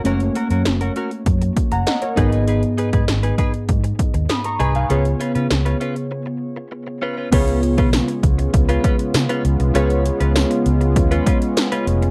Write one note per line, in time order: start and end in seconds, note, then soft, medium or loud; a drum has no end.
0.04 0.28 F#1 loud
0.04 0.11 A3 medium
0.04 2.13 C#4 medium
0.04 0.19 C#4 medium
0.04 2.14 F#4 medium
0.04 0.20 F#4 medium
0.04 0.20 A#4 medium
0.04 1.54 C#5 medium
0.04 closed hi-hat medium
0.11 2.16 A#3 medium
0.20 closed hi-hat soft
0.35 0.47 C#4 medium
0.35 0.47 F#4 medium
0.35 0.47 A#4 medium
0.35 closed hi-hat medium
0.50 0.62 F#2 medium
0.50 0.62 C#4 soft
0.50 0.62 F#4 medium
0.50 0.62 A#4 medium
0.50 closed hi-hat medium
0.65 0.89 F#1 medium
0.65 snare loud
0.65 closed hi-hat medium
0.81 0.93 C#4 medium
0.81 0.92 F#4 medium
0.81 0.92 A#4 medium
0.81 closed hi-hat medium
0.96 1.10 C#4 medium
0.96 1.11 F#4 medium
0.96 1.10 A#4 medium
0.96 closed hi-hat medium
1.11 muted clean electric guitar stroke soft
1.11 closed hi-hat soft
1.26 1.49 F#2 medium
1.26 muted clean electric guitar stroke soft
1.26 kick medium
1.26 closed hi-hat medium
1.42 muted clean electric guitar stroke soft
1.42 closed hi-hat medium
1.57 kick medium
1.57 closed hi-hat medium
1.72 1.83 F#1 medium
1.72 1.86 F#5 medium
1.72 1.86 A#5 medium
1.72 muted clean electric guitar stroke soft
1.72 closed hi-hat soft
1.87 2.02 D#5 medium
1.87 2.01 F#5 medium
1.87 muted clean electric guitar stroke soft
1.87 snare loud
1.87 closed hi-hat medium
2.02 2.31 A#4 medium
2.02 2.31 C#5 medium
2.02 muted clean electric guitar stroke soft
2.02 closed hi-hat medium
2.16 2.63 G#1 medium
2.16 3.04 G#2 medium
2.16 4.55 B3 medium
2.16 4.55 D#4 medium
2.16 2.31 D#4 medium
2.16 4.56 G#4 medium
2.16 2.31 G#4 medium
2.16 2.31 B4 medium
2.16 4.56 D#5 medium
2.16 kick medium
2.16 closed hi-hat medium
2.32 2.44 D#4 medium
2.32 2.44 G#4 medium
2.32 2.43 B4 medium
2.32 closed hi-hat soft
2.47 2.62 D#4 medium
2.47 2.62 G#4 medium
2.47 2.62 B4 medium
2.47 closed hi-hat medium
2.63 closed hi-hat soft
2.78 2.89 D#4 medium
2.78 2.89 G#4 medium
2.78 2.89 B4 medium
2.78 closed hi-hat medium
2.93 3.04 G#2 medium
2.93 3.04 D#4 medium
2.93 3.04 G#4 medium
2.93 3.04 B4 medium
2.93 kick medium
2.93 closed hi-hat medium
3.08 3.31 G#1 medium
3.08 snare loud
3.08 closed hi-hat medium
3.23 3.35 D#4 soft
3.23 3.35 G#4 medium
3.23 3.34 B4 medium
3.23 closed hi-hat medium
3.38 3.52 D#4 medium
3.38 3.53 G#4 medium
3.38 3.52 B4 medium
3.38 kick medium
3.38 closed hi-hat medium
3.54 closed hi-hat soft
3.69 3.92 G#2 medium
3.69 muted clean electric guitar stroke soft
3.69 kick medium
3.69 closed hi-hat medium
3.84 muted clean electric guitar stroke soft
3.84 closed hi-hat medium
3.99 kick medium
3.99 closed hi-hat medium
4.14 4.26 D#2 medium
4.14 muted clean electric guitar stroke soft
4.14 closed hi-hat soft
4.29 4.44 B5 soft
4.29 4.44 D#6 medium
4.29 muted clean electric guitar stroke soft
4.29 snare loud
4.29 closed hi-hat medium
4.44 4.59 A#5 medium
4.44 4.59 C#6 medium
4.44 muted clean electric guitar stroke soft
4.44 closed hi-hat medium
4.59 4.82 C2 medium
4.59 4.74 D#4 medium
4.59 4.74 G#4 medium
4.59 4.73 B4 medium
4.59 4.74 G#5 medium
4.59 4.74 B5 medium
4.59 closed hi-hat medium
4.75 4.86 D#4 medium
4.75 4.86 G#4 medium
4.75 4.86 B4 medium
4.75 5.04 F5 soft
4.75 5.04 G#5 medium
4.75 closed hi-hat soft
4.89 5.13 C#2 loud
4.89 5.77 C#3 medium
4.89 7.28 B3 medium
4.89 5.04 C#4 medium
4.89 7.28 F4 medium
4.89 5.04 F4 medium
4.89 7.29 G#4 medium
4.89 5.04 B4 medium
4.89 7.29 C#5 medium
4.89 closed hi-hat medium
5.05 closed hi-hat soft
5.20 5.31 C#4 medium
5.20 5.31 F4 medium
5.20 5.32 B4 medium
5.20 closed hi-hat medium
5.35 5.47 C#3 medium
5.35 5.47 C#4 soft
5.35 5.47 F4 medium
5.35 5.46 B4 medium
5.35 closed hi-hat medium
5.51 5.73 C#2 medium
5.51 snare loud
5.51 closed hi-hat medium
5.65 5.77 C#4 soft
5.65 5.77 F4 medium
5.65 5.77 B4 medium
5.65 closed hi-hat soft
5.80 5.95 C#4 medium
5.80 5.95 F4 medium
5.80 5.95 B4 medium
5.80 closed hi-hat medium
5.96 muted clean electric guitar stroke soft
5.96 closed hi-hat soft
6.11 muted clean electric guitar stroke soft
6.26 muted clean electric guitar stroke soft
6.56 muted clean electric guitar stroke soft
6.72 muted clean electric guitar stroke soft
6.87 muted clean electric guitar stroke soft
7.02 7.16 C#4 medium
7.02 7.16 F4 medium
7.02 7.16 B4 medium
7.17 7.29 C#4 soft
7.17 7.29 F4 medium
7.17 7.28 B4 medium
7.32 7.78 C#2 loud
7.32 8.20 C#3 medium
7.32 12.11 G#3 medium
7.32 9.71 B3 medium
7.32 12.11 B3 medium
7.32 7.60 C#4 medium
7.32 12.11 C#4 medium
7.32 12.11 F4 medium
7.32 9.71 F4 medium
7.32 7.61 F4 medium
7.32 9.71 G#4 medium
7.32 7.61 B4 medium
7.32 9.72 C#5 medium
7.32 kick loud
7.32 closed hi-hat medium
7.32 crash loud
7.48 closed hi-hat medium
7.63 muted clean electric guitar stroke soft
7.63 closed hi-hat medium
7.78 8.01 B1 medium
7.78 7.89 C#4 soft
7.78 7.89 F4 medium
7.78 7.89 B4 medium
7.78 kick medium
7.78 closed hi-hat medium
7.93 snare loud
7.93 closed hi-hat medium
7.93 tambourine medium
8.08 muted clean electric guitar stroke soft
8.08 closed hi-hat medium
8.23 8.46 C#2 medium
8.23 kick medium
8.23 closed hi-hat medium
8.38 muted clean electric guitar stroke soft
8.38 closed hi-hat soft
8.54 8.77 C#2 medium
8.54 muted clean electric guitar stroke soft
8.54 kick loud
8.54 closed hi-hat medium
8.69 8.83 C#4 medium
8.69 8.83 F4 medium
8.69 8.83 B4 medium
8.69 closed hi-hat medium
8.84 8.95 C#4 medium
8.84 8.95 F4 medium
8.84 8.96 B4 medium
8.84 kick medium
8.84 closed hi-hat medium
8.99 muted clean electric guitar stroke soft
8.99 closed hi-hat medium
9.14 9.26 C#3 loud
9.14 muted clean electric guitar stroke soft
9.14 snare loud
9.14 closed hi-hat medium
9.14 tambourine medium
9.29 9.43 C#4 medium
9.29 9.44 F4 medium
9.29 9.43 B4 medium
9.29 closed hi-hat medium
9.45 9.56 C#2 medium
9.45 muted clean electric guitar stroke soft
9.45 closed hi-hat medium
9.60 9.71 C2 medium
9.60 muted clean electric guitar stroke soft
9.60 closed hi-hat medium
9.74 10.09 C#2 loud
9.74 10.62 C#3 medium
9.74 12.11 B3 medium
9.74 10.03 C#4 medium
9.74 12.11 F4 medium
9.74 10.03 F4 loud
9.74 12.11 G#4 medium
9.74 10.03 B4 loud
9.74 12.11 C#5 medium
9.74 closed hi-hat medium
9.90 closed hi-hat medium
10.05 muted clean electric guitar stroke soft
10.05 closed hi-hat medium
10.20 10.43 C#2 medium
10.20 10.32 C#4 soft
10.20 10.32 F4 medium
10.20 10.31 B4 medium
10.20 closed hi-hat medium
10.36 muted clean electric guitar stroke soft
10.36 snare loud
10.36 closed hi-hat medium
10.36 tambourine medium
10.51 muted clean electric guitar stroke medium
10.51 closed hi-hat medium
10.66 10.96 C#2 medium
10.66 closed hi-hat medium
10.81 muted clean electric guitar stroke soft
10.81 closed hi-hat soft
10.96 11.19 D#2 medium
10.96 muted clean electric guitar stroke soft
10.96 kick loud
10.96 closed hi-hat medium
11.11 11.25 C#4 medium
11.11 11.26 F4 medium
11.11 11.25 B4 medium
11.11 closed hi-hat medium
11.26 11.37 C#4 medium
11.26 11.38 F4 medium
11.26 11.38 B4 medium
11.26 kick medium
11.26 closed hi-hat medium
11.42 closed hi-hat medium
11.57 muted clean electric guitar stroke soft
11.57 snare loud
11.57 closed hi-hat medium
11.57 tambourine medium
11.72 11.86 C#4 medium
11.72 11.86 F4 medium
11.72 11.86 B4 medium
11.72 closed hi-hat medium
11.87 12.10 F1 medium
11.87 muted clean electric guitar stroke soft
11.87 closed hi-hat medium
12.02 muted clean electric guitar stroke medium
12.02 closed hi-hat medium